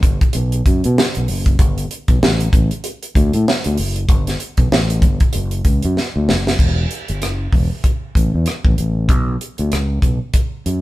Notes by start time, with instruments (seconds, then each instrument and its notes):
0.03 fingered electric bass G1, kick, closed hi-hat
0.21 kick, closed hi-hat
0.33 fingered electric bass B1, closed hi-hat
0.52 closed hi-hat
0.66 fingered electric bass F#2, kick, closed hi-hat
0.84 fingered electric bass B2, closed hi-hat
0.98 snare
1.15 fingered electric bass B1, closed hi-hat
1.28 fingered electric bass F#1, open hi-hat
1.46 kick, closed hi-hat
1.59 fingered electric bass G1, kick, closed hi-hat
1.78 closed hi-hat
1.91 closed hi-hat
2.08 fingered electric bass B1, kick, closed hi-hat
2.23 fingered electric bass A1, snare
2.40 closed hi-hat
2.53 fingered electric bass A1, kick, closed hi-hat
2.71 closed hi-hat
2.84 closed hi-hat
3.03 closed hi-hat
3.15 fingered electric bass D2, kick, closed hi-hat
3.33 fingered electric bass A2, closed hi-hat
3.48 snare
3.64 fingered electric bass D2, closed hi-hat
3.77 fingered electric bass F#1, open hi-hat
3.96 closed hi-hat
4.09 fingered electric bass G1, kick, closed hi-hat
4.27 snare, closed hi-hat
4.40 closed hi-hat
4.57 fingered electric bass B1, kick, closed hi-hat
4.72 fingered electric bass A1, snare
4.90 closed hi-hat
5.02 fingered electric bass G1, kick, closed hi-hat
5.20 kick, closed hi-hat
5.33 fingered electric bass F#1, closed hi-hat
5.51 closed hi-hat
5.65 fingered electric bass C#2, kick, closed hi-hat
5.82 fingered electric bass F#2, closed hi-hat
5.97 snare
6.16 fingered electric bass D2
6.29 fingered electric bass F#1, snare
6.47 snare
6.59 fingered electric bass E1, kick, crash
6.91 closed hi-hat
7.08 fingered electric bass G1, closed hi-hat
7.22 fingered electric bass F#1, cross-stick, closed hi-hat
7.53 fingered electric bass E1, kick, open hi-hat
7.84 kick, closed hi-hat
8.15 fingered electric bass A1, kick, closed hi-hat
8.34 fingered electric bass E2
8.46 cross-stick, closed hi-hat
8.65 fingered electric bass A1, kick
8.78 fingered electric bass A1, closed hi-hat
9.09 fingered electric bass B1, kick, closed hi-hat
9.41 closed hi-hat
9.58 fingered electric bass D2, closed hi-hat
9.72 fingered electric bass C#2, cross-stick, closed hi-hat
10.02 fingered electric bass B1, kick, closed hi-hat
10.34 kick, closed hi-hat
10.66 fingered electric bass F#2, closed hi-hat